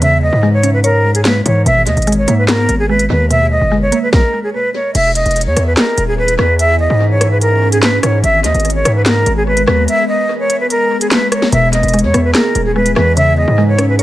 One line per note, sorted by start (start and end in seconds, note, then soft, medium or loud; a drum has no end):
0.00 0.31 E2 loud
0.00 1.05 C#3 loud
0.00 0.21 E5 loud
0.00 closed hi-hat medium
0.22 0.51 D#5 medium
0.33 1.42 G#2 loud
0.43 1.24 G#3 loud
0.53 0.72 C#5 medium
0.63 1.66 C#4 medium
0.63 closed hi-hat medium
0.73 0.83 B4 medium
0.84 1.13 A#4 loud
0.84 1.66 C#5 loud
0.84 closed hi-hat medium
1.15 1.24 G#4 medium
1.15 closed hi-hat medium
1.25 1.66 G#3 medium
1.25 1.44 B4 medium
1.25 snare loud
1.25 clap loud
1.25 closed hi-hat medium
1.46 1.65 G#2 loud
1.46 1.66 E3 medium
1.46 1.65 C#5 medium
1.46 closed hi-hat medium
1.66 1.88 G#1 loud
1.66 2.69 B2 loud
1.66 1.85 E5 loud
1.66 closed hi-hat medium
1.87 1.96 D#2 loud
1.87 2.16 D#5 medium
1.87 closed hi-hat medium
1.97 2.27 G#1 loud
1.97 closed hi-hat soft
2.02 closed hi-hat medium
2.07 2.88 G#3 loud
2.07 closed hi-hat medium
2.12 closed hi-hat medium
2.18 2.37 C#5 medium
2.28 2.67 G#2 loud
2.28 3.31 A#3 medium
2.28 closed hi-hat medium
2.38 2.48 B4 medium
2.48 3.51 B3 loud
2.48 2.77 A#4 loud
2.48 snare loud
2.48 clap medium
2.48 closed hi-hat medium
2.69 3.08 G#1 loud
2.69 closed hi-hat medium
2.79 2.89 G#4 loud
2.89 3.70 G#3 medium
2.89 3.09 B4 medium
2.99 closed hi-hat medium
3.10 3.59 D#2 loud
3.10 4.13 D#3 medium
3.10 3.29 B4 medium
3.31 4.33 B2 medium
3.31 3.50 E5 loud
3.31 closed hi-hat medium
3.51 3.80 D#5 medium
3.61 3.91 G1 loud
3.72 4.74 G#3 medium
3.82 4.01 C#5 medium
3.92 4.95 A#3 medium
3.92 closed hi-hat medium
4.03 4.12 B4 medium
4.13 4.42 A#4 medium
4.13 kick loud
4.13 snare medium
4.43 4.53 G#4 medium
4.54 4.73 B4 medium
4.74 4.94 C#5 medium
4.95 5.24 E1 loud
4.95 8.20 E3 medium
4.95 6.58 B3 medium
4.95 8.20 G#4 medium
4.95 5.14 E5 loud
4.95 closed hi-hat medium
4.95 crash loud
5.15 5.44 D#5 medium
5.15 closed hi-hat medium
5.26 5.48 E1 loud
5.26 closed hi-hat soft
5.31 closed hi-hat medium
5.36 closed hi-hat medium
5.41 closed hi-hat medium
5.46 5.56 E2 loud
5.46 5.65 C#5 medium
5.57 5.76 E2 loud
5.57 cross-stick medium
5.57 closed hi-hat loud
5.67 5.76 B4 medium
5.77 6.06 A#4 medium
5.77 snare loud
5.77 clap medium
5.77 closed hi-hat medium
5.98 6.37 D#1 loud
5.98 closed hi-hat medium
6.08 6.17 G#4 medium
6.18 6.37 B4 loud
6.28 closed hi-hat medium
6.39 6.88 E2 loud
6.39 6.58 B4 medium
6.39 cross-stick loud
6.59 8.22 C#4 medium
6.59 6.78 E5 loud
6.59 closed hi-hat medium
6.80 7.09 D#5 medium
6.90 7.99 G#2 loud
7.11 7.30 C#5 medium
7.21 cross-stick medium
7.21 closed hi-hat medium
7.31 7.41 B4 medium
7.41 7.70 A#4 loud
7.41 closed hi-hat medium
7.72 7.82 G#4 medium
7.72 closed hi-hat medium
7.83 8.02 B4 medium
7.83 snare loud
7.83 clap loud
7.83 closed hi-hat medium
8.03 8.23 G#2 loud
8.03 8.22 C#5 medium
8.03 cross-stick loud
8.03 closed hi-hat medium
8.23 8.46 G#1 loud
8.23 11.49 G#3 medium
8.23 13.13 B3 medium
8.23 11.49 A#4 medium
8.23 8.43 E5 loud
8.23 closed hi-hat medium
8.44 8.54 D#2 loud
8.44 8.73 D#5 medium
8.44 closed hi-hat medium
8.55 8.84 G#1 loud
8.55 closed hi-hat soft
8.60 closed hi-hat medium
8.65 closed hi-hat medium
8.70 closed hi-hat medium
8.75 8.94 C#5 medium
8.85 9.25 G#2 loud
8.85 cross-stick loud
8.85 closed hi-hat medium
8.96 9.05 B4 medium
9.06 9.35 A#4 loud
9.06 snare loud
9.06 clap medium
9.06 closed hi-hat medium
9.26 9.66 G#1 loud
9.26 closed hi-hat medium
9.37 9.46 G#4 loud
9.47 9.66 B4 medium
9.57 closed hi-hat medium
9.67 9.87 D#2 loud
9.67 9.86 B4 medium
9.67 cross-stick loud
9.88 10.07 E5 loud
9.88 closed hi-hat medium
10.09 10.38 D#5 loud
10.40 10.59 C#5 medium
10.50 closed hi-hat loud
10.60 10.70 B4 medium
10.70 10.99 A#4 medium
10.70 closed hi-hat medium
11.01 11.11 G#4 medium
11.01 closed hi-hat medium
11.11 11.30 B4 medium
11.11 snare loud
11.11 clap loud
11.11 closed hi-hat medium
11.32 11.51 C#5 medium
11.32 cross-stick loud
11.32 closed hi-hat medium
11.42 snare medium
11.52 11.82 E1 loud
11.52 12.55 B2 loud
11.52 14.03 E3 medium
11.52 14.03 G#4 medium
11.52 11.72 E5 loud
11.52 closed hi-hat medium
11.73 12.02 D#5 medium
11.73 closed hi-hat medium
11.83 12.05 E1 loud
11.83 closed hi-hat soft
11.88 closed hi-hat medium
11.94 12.75 G#3 medium
11.94 closed hi-hat medium
11.99 closed hi-hat medium
12.04 12.14 E2 loud
12.04 12.23 C#5 medium
12.14 12.34 E2 loud
12.14 13.17 B3 medium
12.14 cross-stick loud
12.14 closed hi-hat medium
12.24 12.34 B4 medium
12.35 13.17 G#4 loud
12.35 12.64 A#4 medium
12.35 snare loud
12.35 clap medium
12.35 closed hi-hat medium
12.55 12.95 D#1 loud
12.55 closed hi-hat medium
12.65 12.75 G#4 medium
12.76 13.17 G#3 medium
12.76 12.95 B4 medium
12.86 closed hi-hat medium
12.96 13.46 E2 loud
12.96 13.17 E3 medium
12.96 13.15 B4 medium
12.96 cross-stick loud
13.17 14.03 C#3 loud
13.17 14.03 C#4 medium
13.17 13.36 E5 loud
13.17 closed hi-hat medium
13.37 13.66 D#5 medium
13.48 14.03 G#2 loud
13.58 14.03 G#3 loud
13.68 13.87 C#5 medium
13.78 14.03 C#4 medium
13.78 cross-stick loud
13.78 closed hi-hat loud
13.89 13.98 B4 medium
13.99 14.03 A#4 loud
13.99 14.03 C#5 loud
13.99 closed hi-hat medium